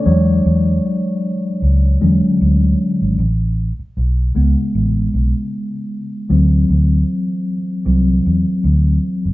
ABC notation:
X:1
M:4/4
L:1/16
Q:"Swing 16ths" 1/4=77
K:Edor
V:1 name="Tine electric piano"
[Dd]6 z8 z2 | z16 | z16 |]
V:2 name="Tine electric piano" clef=bass
[E,F,^G,c]8- [E,F,G,c]2 [D,F,G,C]2 z4 | z6 [C,^G,B,]2 z8 | [E,F,=C]6 z2 [E,F,C]2 z6 |]
V:3 name="Fingered electric bass" clef=bass
E,,2 E,,2 z4 C,,2 E,, z D,,2 z ^G,,, | A,,,3 z B,,,2 C,, z A,,,2 B,,, z4 z | D,,2 D,,2 z4 =C,,2 E,, z D,,2 z F,,, |]